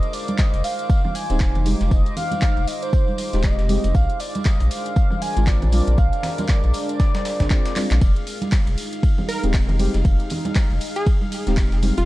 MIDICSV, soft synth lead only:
0, 0, Header, 1, 2, 480
1, 0, Start_track
1, 0, Tempo, 508475
1, 1806, Time_signature, 4, 2, 24, 8
1, 11377, End_track
2, 0, Start_track
2, 0, Title_t, "Soft synth lead"
2, 0, Program_c, 0, 80
2, 0, Note_on_c, 0, 75, 105
2, 126, Note_on_c, 0, 74, 94
2, 141, Note_off_c, 0, 75, 0
2, 366, Note_on_c, 0, 75, 100
2, 380, Note_off_c, 0, 74, 0
2, 605, Note_on_c, 0, 77, 110
2, 619, Note_off_c, 0, 75, 0
2, 1086, Note_on_c, 0, 80, 110
2, 1100, Note_off_c, 0, 77, 0
2, 1566, Note_off_c, 0, 80, 0
2, 1807, Note_on_c, 0, 75, 96
2, 2030, Note_off_c, 0, 75, 0
2, 2047, Note_on_c, 0, 77, 101
2, 2527, Note_on_c, 0, 75, 93
2, 2541, Note_off_c, 0, 77, 0
2, 2667, Note_on_c, 0, 72, 97
2, 2682, Note_off_c, 0, 75, 0
2, 3247, Note_on_c, 0, 75, 101
2, 3261, Note_off_c, 0, 72, 0
2, 3726, Note_on_c, 0, 77, 106
2, 3741, Note_off_c, 0, 75, 0
2, 3967, Note_on_c, 0, 74, 98
2, 3981, Note_off_c, 0, 77, 0
2, 4206, Note_on_c, 0, 75, 102
2, 4221, Note_off_c, 0, 74, 0
2, 4446, Note_on_c, 0, 77, 117
2, 4460, Note_off_c, 0, 75, 0
2, 4926, Note_on_c, 0, 80, 112
2, 4941, Note_off_c, 0, 77, 0
2, 5166, Note_on_c, 0, 74, 106
2, 5180, Note_off_c, 0, 80, 0
2, 5646, Note_on_c, 0, 77, 114
2, 5660, Note_off_c, 0, 74, 0
2, 6126, Note_on_c, 0, 74, 99
2, 6141, Note_off_c, 0, 77, 0
2, 6502, Note_off_c, 0, 74, 0
2, 6507, Note_on_c, 0, 74, 102
2, 7048, Note_off_c, 0, 74, 0
2, 7085, Note_on_c, 0, 74, 87
2, 7532, Note_off_c, 0, 74, 0
2, 11377, End_track
0, 0, End_of_file